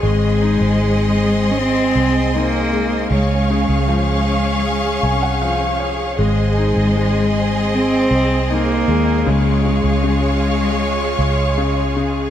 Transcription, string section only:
\new Staff \with { instrumentName = "String section" } { \time 4/4 \key des \major \tempo 4 = 78 << { <ees'' c'''>1 | <f'' des'''>1 | <ees'' c'''>1 | <f'' des'''>1 | } \\ { aes'1 | aes'1~ | aes'1~ | aes'1 | } >> }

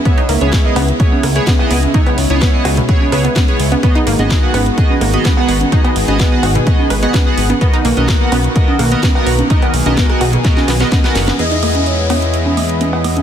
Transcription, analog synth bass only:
\new Staff \with { instrumentName = "Analog synth bass" } { \clef bass \time 4/4 \key b \major \tempo 4 = 127 r8 cis,16 cis,16 r8 cis,16 r8. cis,16 r8. cis,16 r16 | r8 cis,16 cis,16 r8 cis,16 r8. cis,16 r8. cis,16 r16 | r8 gis,,16 gis,,16 r8 gis,,16 r8. gis,,16 r8. gis,,16 r16 | r8 gis,,16 gis,,16 r8 gis,,16 r8. gis,,16 r8. gis,,16 r16 |
r8 b,,16 b,,16 r8 b,,16 r8. b,,16 r8. b,,16 r16 | r8 b,,16 b,,16 r8 b,,16 r8. b,,16 r8. fis,,16 r16 | e,1 | }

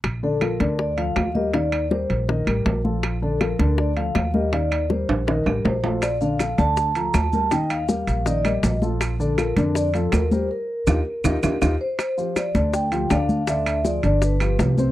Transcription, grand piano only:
\new Staff \with { instrumentName = "Grand piano" } { \time 4/4 \key bes \major \tempo 4 = 161 r8 <d d' d''>8 <f f' a'>8 <d d' d''>4 <f f' a'>4 <g g' bes'>8 | <ees ees' f''>4 <g g' bes'>4 <ees ees' ees''>8 <g g' bes'>4 <f f' a'>8~ | <f f' a'>8 <d d' d''>8 <f f' a'>8 <d d' d''>4 <f f' a'>4 <g g' bes'>8 | <ees ees' f''>4 <g g' bes'>4 <ees ees' ees''>8 <g g' bes'>4 <f f' a'>8~ |
<f f' a'>8 <d d' d''>8 <f f' a'>8 <d d' d''>4 <f f' a'>4 <g g' bes'>8 | <ees ees' ees''>4 <g g' bes'>4 <ees ees' ees''>8 <g g' bes'>4 <f f' a'>8~ | <f f' a'>8 <d d' d''>8 <f f' a'>8 <d d' d''>4 <f f' a'>4 <g g' bes'>8 | r4 <ees' f' g'>8 r8 <ees' f' g'>8 <ees' f' g'>8 <ees' f' g'>8 r8 |
r8 <f f' g'>4 <d d' d''>4 <f f' g'>8 <d d' d''>4 | <d d' d''>4 <f f' aes'>8 <d d' d''>4 <f f' g'>8 <f f' g'>8 <c c' c''>8 | }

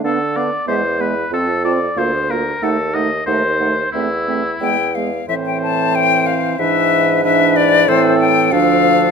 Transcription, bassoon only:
\new Staff \with { instrumentName = "Bassoon" } { \clef bass \time 2/4 \key a \minor \tempo 4 = 92 d4 e,4 | f,4 d,4 | dis,4 dis,4 | e,4 e,4 |
a,2 | gis,2 | a,4 d,4 | }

